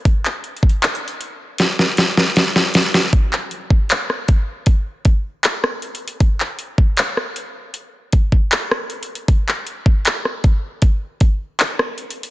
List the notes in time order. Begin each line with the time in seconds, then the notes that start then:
0.05 kick, closed hi-hat
0.25 clap
0.44 closed hi-hat
0.57 closed hi-hat
0.63 kick
0.69 closed hi-hat
0.82 clap, closed hi-hat
0.95 closed hi-hat
1.08 closed hi-hat
1.21 closed hi-hat
1.58 snare, closed hi-hat
1.79 snare
1.97 snare, closed hi-hat
2.17 snare
2.36 snare, closed hi-hat
2.56 snare
2.74 snare, open hi-hat
2.94 snare
3.13 kick, closed hi-hat
3.33 clap
3.51 closed hi-hat
3.70 kick
3.89 clap, closed hi-hat
4.10 cross-stick
4.28 kick, closed hi-hat
4.66 kick, closed hi-hat
5.05 kick, closed hi-hat
5.43 clap, closed hi-hat
5.64 cross-stick
5.82 closed hi-hat
5.95 closed hi-hat
6.08 closed hi-hat
6.20 kick, closed hi-hat
6.40 clap
6.59 closed hi-hat
6.78 kick
6.97 clap, closed hi-hat
7.17 cross-stick
7.36 closed hi-hat
7.74 closed hi-hat
8.12 kick, closed hi-hat
8.32 kick
8.51 clap, closed hi-hat
8.71 cross-stick
8.90 closed hi-hat
9.03 closed hi-hat
9.15 closed hi-hat
9.28 kick, closed hi-hat
9.48 clap
9.67 closed hi-hat
9.86 kick
10.05 clap, closed hi-hat
10.25 cross-stick
10.44 kick, closed hi-hat
10.82 kick, closed hi-hat
11.20 kick, closed hi-hat
11.59 clap, closed hi-hat
11.79 cross-stick
11.98 closed hi-hat
12.10 closed hi-hat
12.23 closed hi-hat